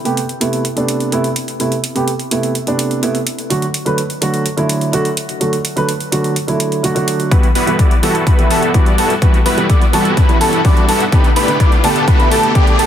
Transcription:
0.05 C3 A3 B3 G4, closed hi-hat
0.17 closed hi-hat
0.29 closed hi-hat
0.40 C3 A3 B3 E4, closed hi-hat
0.53 closed hi-hat
0.65 closed hi-hat
0.76 C3 A3 B3 D4, closed hi-hat
0.88 closed hi-hat
1.00 closed hi-hat
1.12 C3 A3 B3 E4, closed hi-hat
1.24 closed hi-hat
1.36 closed hi-hat
1.48 closed hi-hat
1.60 C3 A3 B3 E4, closed hi-hat
1.72 closed hi-hat
1.84 closed hi-hat
1.95 C3 A3 B3 G4, closed hi-hat
2.08 closed hi-hat
2.19 closed hi-hat
2.31 C3 A3 B3 E4, closed hi-hat
2.43 closed hi-hat
2.55 closed hi-hat
2.67 C3 A3 B3 D4, closed hi-hat
2.79 closed hi-hat
2.91 closed hi-hat
3.02 C3 A3 B3 E4, closed hi-hat
3.15 closed hi-hat
3.27 closed hi-hat
3.39 closed hi-hat
3.50 D3 F#3 A3 F#4, closed hi-hat
3.62 closed hi-hat
3.74 closed hi-hat
3.86 D3 F#3 A3 B4, closed hi-hat
3.98 closed hi-hat
4.10 closed hi-hat
4.21 D3 F#3 A3 F#4, closed hi-hat
4.34 closed hi-hat
4.46 closed hi-hat
4.57 D3 F#3 A3 E4, closed hi-hat
4.69 closed hi-hat
4.81 closed hi-hat
4.93 D3 F#3 A3 F#4, closed hi-hat
5.05 closed hi-hat
5.17 closed hi-hat
5.29 closed hi-hat
5.40 D3 F#3 A3 F#4, closed hi-hat
5.53 closed hi-hat
5.65 closed hi-hat
5.76 D3 F#3 A3 B4, closed hi-hat
5.89 closed hi-hat
6.00 closed hi-hat
6.12 D3 F#3 A3 F#4, closed hi-hat
6.24 closed hi-hat
6.36 closed hi-hat
6.48 D3 F#3 A3 E4, closed hi-hat
6.60 closed hi-hat
6.72 closed hi-hat
6.83 D3 F#3 A3 F#4, closed hi-hat
6.95 D3 F#3 A3 F#4, closed hi-hat
7.08 closed hi-hat
7.20 closed hi-hat
7.31 E3 G3 B3 E4 F#4 B4 B5, kick, closed hi-hat, riser
7.43 closed hi-hat
7.55 G3 B3 E4 F#4 B4 B5, open hi-hat
7.67 E3 G3 B3 A4, closed hi-hat
7.79 G3 B3 E4 F#4 D5 D6, kick, closed hi-hat
7.91 closed hi-hat
8.02 E3 G3 B3 E4 F#4 A4 A5, open hi-hat
8.15 closed hi-hat
8.27 G3 B3 E4 B5, kick, closed hi-hat
8.38 E3 G3 B3 E4, closed hi-hat
8.50 G3 B3 E4 F#4 A4 A5, open hi-hat
8.63 closed hi-hat
8.74 E3 G3 B3 E4 F#4 D6, kick, closed hi-hat
8.86 closed hi-hat
8.98 G3 B3 E4 F#4 A4 A5, open hi-hat
9.10 closed hi-hat
9.21 E3 G3 B3 E4 F#4 B4 B5, kick, closed hi-hat
9.34 closed hi-hat
9.46 G3 B3 E4 F#4 B4 B5, open hi-hat
9.57 E3 G3 B3 A4, closed hi-hat
9.69 G3 F#4 D5 D6, kick, closed hi-hat
9.81 closed hi-hat
9.93 E3 G3 B3 E4 F#4 A4 A5, open hi-hat
10.05 closed hi-hat
10.17 G3 B3 E4 F#4 B4 B5, kick, closed hi-hat
10.29 E3 G3 B3 E4, closed hi-hat
10.41 G3 B3 E4 F#4 A4 A5, open hi-hat
10.53 closed hi-hat
10.64 E3 G3 B3 F#4 D5 D6, kick, open hi-hat
10.77 closed hi-hat
10.88 G3 B3 E4 F#4 A4 A5, open hi-hat
11.00 closed hi-hat
11.12 D3 A3 B3 D4 G4 B4 B5, kick, closed hi-hat
11.24 closed hi-hat
11.36 A3 B3 D4 G4 B4 B5, open hi-hat
11.48 D3 A3 B3 B4, closed hi-hat
11.60 B3 G4 D6, kick, closed hi-hat
11.72 closed hi-hat
11.83 D3 A3 B3 D4 G4 A4 A5, open hi-hat
11.96 closed hi-hat
12.08 A3 B3 D4 G4 B4 B5, kick, closed hi-hat
12.19 D3 A3 B3 E4, closed hi-hat
12.31 A3 B3 D4 G4 A4 A5, open hi-hat
12.43 closed hi-hat
12.55 D3 A3 B3 D4 G4 D5 D6, kick, closed hi-hat
12.67 closed hi-hat
12.79 A3 B3 D4 G4 A4 A5, open hi-hat

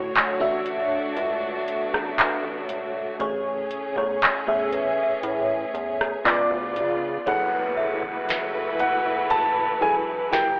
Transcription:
Already playing: A2 D3 A3 D4 F#4 C#5
0.15 A1, clap, closed hi-hat
0.40 A1 A3 D4 F#4 E5
0.66 closed hi-hat
1.16 C#2 B3, closed hi-hat
1.68 closed hi-hat
1.93 A1, cross-stick
2.19 clap, closed hi-hat
2.44 A1
2.69 E1, closed hi-hat
3.19 A1 A2 A3 C#4 G#4 C#5, kick, closed hi-hat
3.71 closed hi-hat
3.96 E2 A2 A3 G#4 C#5, kick, cross-stick
4.22 E2, clap, closed hi-hat
4.47 E2 A2 A3 G#4 E5
4.72 B4, closed hi-hat
5.03 E5
5.23 A2, closed hi-hat
5.74 E2, closed hi-hat
6.01 cross-stick
6.25 C#2 C#3 B3 D4 F4 D5, clap, closed hi-hat
6.50 D2
6.76 C#3, closed hi-hat
7.26 F#1 E3 F#3 A3 E4 F#4 G#4 A4 B4 C#5 F#5, kick, closed hi-hat, downlifter
7.77 E5
8.03 kick
8.29 snare, closed hi-hat
8.79 F#5, closed hi-hat
9.30 A5 B5, closed hi-hat
9.81 E1 F#3 E4 G#4 A4 B4 G#5
10.32 F#1 F#3 E4 G4 A#4 G5, snare, closed hi-hat

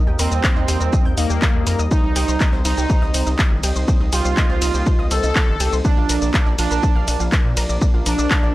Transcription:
Already playing: G3 A#3 D#4 A#4 D#5
0.07 D#2 G4 G5
0.19 D#2 C4 A#4 A#5, open hi-hat, shaker
0.32 D#2 D#5 D#6, shaker
0.44 G5 G6, kick, clap, shaker
0.56 D#2 D#4 D#5
0.68 D#2 G4 G5, open hi-hat, shaker
0.81 D#2 A#4 A#5, shaker
0.93 D#5 D#6, kick, shaker
1.05 D#2 G5 G6
1.18 D#2 A#3 D#4 D#5, open hi-hat, shaker
1.30 D#2 G4 G5, shaker
1.42 kick, clap, shaker
1.55 D#2
1.67 F2 A#4 A#5, open hi-hat, shaker
1.79 D#2 D#5 D#6, shaker
1.91 C4 D#4 C5, kick, shaker
2.04 C2 D#4 D#5
2.16 C2 G4 G5, open hi-hat, ride, shaker
2.28 C2 C5 C6, shaker
2.40 D#5 D#6, kick, clap, shaker
2.53 C2 C4 C5
2.65 C2 D#4 D#5, open hi-hat, ride, shaker
2.77 C2 G4 G5, shaker
2.90 C5 C6, kick, shaker
3.02 C2 D#5 D#6
3.14 C2 C4 C5, open hi-hat, ride, shaker
3.27 C2 D#4 D#5, shaker
3.39 kick, clap, shaker
3.51 G1
3.63 C2 G4 G5, open hi-hat, ride, shaker
3.76 C2 C5 C6, shaker
3.88 A#3 C4 C5, kick, shaker
4.00 C2 D#4 D#5
4.13 C2 F4 G4 G5, open hi-hat, ride, shaker
4.25 C2 C5 C6, shaker
4.37 D#5 D#6, kick, clap, shaker
4.50 C2 C4 C5
4.62 C2 D#4 D#5, open hi-hat, ride, shaker
4.74 C2 G4 G5, shaker
4.86 C5 C6, kick, shaker
4.99 C2 D#5 D#6
5.11 C2 C4 A4 C5, open hi-hat, ride, shaker
5.23 C2 D#4 D#5, shaker
5.36 kick, clap, shaker
5.48 G1
5.60 C2 G4 G5, open hi-hat, ride, shaker
5.73 C2 C5 C6, shaker
5.85 F3 A#3 D4 A#4 D5, kick, shaker
5.97 A#1 F4 F5
6.09 A#1 A#4 A#5, open hi-hat, ride, shaker
6.22 A#1 D5 D6, shaker
6.34 F5 F6, kick, clap, shaker
6.46 A#1 D4 D5
6.59 A#1 D4 F4 F5, open hi-hat, ride, shaker
6.71 A#1 A#4 A#5, shaker
6.83 D5 D6, kick, shaker
6.96 A#1 F5 F6
7.08 A#1 D4 D5, open hi-hat, ride, shaker
7.20 A#1 F4 F5, shaker
7.32 kick, clap, shaker
7.45 A#2
7.57 A#1 A#4 A#5, open hi-hat, ride, shaker
7.69 A#1 D5 D6, shaker
7.82 D4 D5, kick, shaker
7.94 A#1 F4 F5
8.06 A#1 D4 A#4 A#5, open hi-hat, ride, shaker
8.19 A#1 D5 D6, shaker
8.31 F5 F6, kick, clap, shaker
8.43 A#1 D4 D5

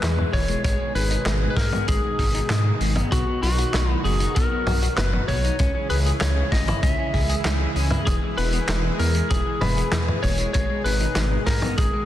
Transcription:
Already playing: B2 E3 G#3 E4 G#4 B4
0.03 E2 E3, snare, clap, closed hi-hat
0.18 E3, mid tom
0.33 E1 E3 C#5, kick, open hi-hat
0.48 G#3, closed hi-hat
0.64 G#1 D#3 G#3 D#4 C#5, kick, closed hi-hat
0.80 G#3
0.95 G#1 D#4 B4, open hi-hat
1.11 D#4, closed hi-hat
1.26 G#1 G#3, snare, clap, closed hi-hat
1.42 G#3
1.50 B4
1.56 G#2 G#3 A#4, kick, snare, open hi-hat
1.73 B3, closed hi-hat, mid tom
1.88 G#1 G#3 G#4, kick, closed hi-hat
2.04 G#3
2.19 G#1 D#4, kick, open hi-hat
2.34 D#4, closed hi-hat
2.50 G#2 G#3, snare, clap, closed hi-hat
2.65 G#3
2.81 G#1 G#3, open hi-hat
2.96 B3, closed hi-hat, mid tom
3.12 B1 F#3 B3 F#4, kick, closed hi-hat
3.27 B3
3.43 B1 F#4, open hi-hat
3.58 F#4, closed hi-hat
3.74 B1 B3, snare, clap, closed hi-hat
3.89 B3 E4
4.04 F#1 B3 G#4, open hi-hat
4.20 D#4, closed hi-hat
4.35 B1 B3 A#4, kick, closed hi-hat
4.51 B3
4.67 B1 F#4, open hi-hat, mid tom
4.82 F#4, closed hi-hat
4.97 F#1 B3 B4, snare, clap, closed hi-hat
5.13 B3, mid tom
5.28 B1 B3 C#5, kick, open hi-hat
5.44 D#4, closed hi-hat
5.59 C#2 C#3 E3 G#3 C#4 E4 G#4, kick, closed hi-hat
5.75 C#4
5.90 C#2 G#4 B4, open hi-hat
6.06 G#4, closed hi-hat
6.21 C#2 C#4 C#5, snare, clap, closed hi-hat
6.36 C#4
6.52 G#1 C#4 D#5, kick, snare, open hi-hat
6.67 E4, closed hi-hat, mid tom
6.83 C#2 C#4 E5, kick, closed hi-hat
6.98 C#4
7.14 C#2 G#4, kick, open hi-hat
7.29 G#4, closed hi-hat
7.44 C#2 C#4, snare, clap, closed hi-hat
7.60 C#4
7.76 C#2 C#4, open hi-hat
7.91 E4, closed hi-hat, mid tom
8.07 E1 B2 E3 G#4, kick, closed hi-hat
8.22 E3
8.38 E1 B3 B4, open hi-hat
8.53 B3, closed hi-hat
8.69 E1 E3, snare, clap, closed hi-hat
8.84 E3
8.99 E2 E3 A#4, open hi-hat
9.15 G#3, closed hi-hat
9.30 E1 E3 G#4, kick, closed hi-hat
9.46 E3
9.61 E1 B3 B4, open hi-hat, mid tom
9.77 B3, closed hi-hat
9.92 E2 E3, snare, clap, closed hi-hat
10.08 E3, mid tom
10.23 E1 E3 C#5, kick, open hi-hat
10.38 G#3, closed hi-hat
10.53 G#1 D#3 G#3 D#4 C#5, kick, closed hi-hat
10.70 G#3
10.84 G#1 D#4 B4, open hi-hat
11.00 D#4, closed hi-hat
11.15 G#1 G#3, snare, clap, closed hi-hat
11.32 G#3
11.46 G#2 G#3 A#4, kick, snare, open hi-hat
11.62 B3, closed hi-hat, mid tom
11.78 G#1 G#3 G#4, kick, closed hi-hat
11.93 G#3

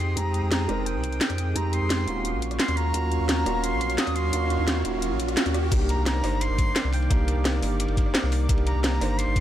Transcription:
Already playing: F2 G#3 C4 D#4 G4 C6 D#6
0.16 F2 G#3 C4 D#4 G4 A#5, kick, closed hi-hat, riser
0.34 closed hi-hat
0.43 F2
0.52 A#5, snare, closed hi-hat
0.68 F1 G#3 C4 D#4 A#4, cross-stick, closed hi-hat
0.86 G5, closed hi-hat
0.95 C2
1.04 kick, closed hi-hat
1.12 closed hi-hat
1.21 snare, closed hi-hat
1.30 F2, kick, cross-stick, closed hi-hat
1.38 closed hi-hat
1.55 F2 G#3 C4 D#4 G4 A#5, kick, closed hi-hat
1.73 C6, closed hi-hat
1.82 F2
1.90 snare, closed hi-hat
2.06 D#1 A#3 C#4 F4 F#4, kick, closed hi-hat
2.25 F#3 C#5 F5, closed hi-hat
2.34 A#1
2.42 kick, closed hi-hat
2.51 cross-stick, closed hi-hat
2.59 C6, snare, closed hi-hat
2.68 D#2, cross-stick, closed hi-hat
2.77 A#5, closed hi-hat
2.93 D#2 A#3 C#4 F4 F#4, kick, closed hi-hat
3.12 closed hi-hat
3.20 D#2
3.29 A#5, snare, closed hi-hat
3.45 D#1 A#3 C#4 F4 F#4, cross-stick, closed hi-hat
3.63 C6, closed hi-hat
3.72 A#1
3.81 kick, closed hi-hat
3.90 closed hi-hat
3.98 D#6, snare, closed hi-hat
4.07 D#2, kick, cross-stick, closed hi-hat
4.15 C6, closed hi-hat
4.32 D#2 A#3 C#4 F4 F#4, kick, closed hi-hat
4.50 closed hi-hat
4.59 D#2
4.68 snare, closed hi-hat
4.84 D#1 A#3 C#4 F4 F#4, kick, closed hi-hat
5.02 closed hi-hat
5.11 A#1
5.20 kick, closed hi-hat
5.28 cross-stick, closed hi-hat
5.37 snare, closed hi-hat
5.46 D#2, cross-stick, closed hi-hat
5.54 cross-stick, closed hi-hat
5.71 C2 D#3 A#3 D4 D#4 G4 D5, kick, closed hi-hat, crash, ride
5.81 ride
5.89 A#5, closed hi-hat, ride
5.98 C2
6.06 A#5, snare, closed hi-hat, ride
6.15 snare
6.23 G1 A#3 D4 D#4 C5, cross-stick, snare, open hi-hat, ride
6.41 C6, closed hi-hat, ride
6.50 G1
6.58 kick, closed hi-hat, ride
6.76 snare, closed hi-hat, ride
6.84 C2, cross-stick
6.92 G5, open hi-hat, ride
7.02 ride
7.10 C2 A#3 D4 D#4 G4, kick, closed hi-hat, ride
7.28 closed hi-hat, ride
7.37 C2
7.45 snare, closed hi-hat, ride
7.61 G1 A#3 D4 D#4 G4, open hi-hat, ride
7.80 closed hi-hat, ride
7.88 G1, ride
7.97 kick, closed hi-hat, ride
8.06 cross-stick
8.14 snare, closed hi-hat, ride
8.23 C2, cross-stick, snare
8.32 open hi-hat, ride
8.48 C2 A#3 D4 D#4 G4, kick, closed hi-hat, ride
8.57 ride
8.66 A#5, closed hi-hat, ride
8.75 C2
8.83 A#5, snare, closed hi-hat, ride
8.92 snare
9.00 G1 A#3 D4 D#4 C5, cross-stick, snare, open hi-hat, ride
9.18 C6, closed hi-hat, ride
9.27 G1
9.36 kick, closed hi-hat, ride

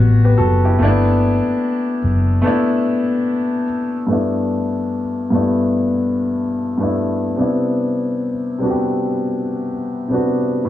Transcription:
Already playing: G3 B3 C#4 F#4
0.00 A1
0.24 G4 B4
0.37 F#1 F#4 A4
0.65 E4 G4
0.78 G1 A3 A#3 D4
0.84 B3 E4
2.04 F#1
2.42 A3 B3 D4
2.47 E4
4.07 G2 A3 B3
4.11 D4 E4
5.30 G2 A3 B3
5.34 D4 E4
6.78 G2 A3 B3
6.82 D4 E4
7.36 C3 G3 B3
7.40 D4 E4
8.58 C3 G3 B3
8.63 D4 F#4
8.71 G4
10.08 C3 G3 B3
10.13 D4 F#4
10.65 A2 G3

